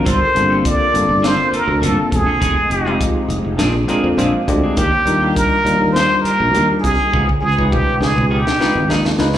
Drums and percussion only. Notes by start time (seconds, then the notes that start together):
0.06 kick, closed hi-hat
0.36 closed hi-hat
0.65 kick, closed hi-hat
0.95 closed hi-hat
1.24 snare, closed hi-hat
1.54 closed hi-hat
1.83 closed hi-hat
2.12 kick, closed hi-hat
2.42 kick, closed hi-hat
2.71 closed hi-hat
3.01 kick, closed hi-hat
3.30 closed hi-hat
3.59 snare, closed hi-hat
3.89 closed hi-hat
4.19 closed hi-hat
4.48 kick, closed hi-hat
4.77 kick, closed hi-hat
5.07 closed hi-hat
5.36 kick, closed hi-hat
5.66 closed hi-hat
5.96 snare, closed hi-hat
6.25 closed hi-hat
6.55 closed hi-hat
6.84 kick, closed hi-hat
7.13 kick, high tom
7.29 kick
7.59 kick
7.72 kick, mid tom
8.02 snare
8.18 mid tom
8.47 snare
8.61 snare
8.90 snare
9.05 snare
9.19 snare
9.35 snare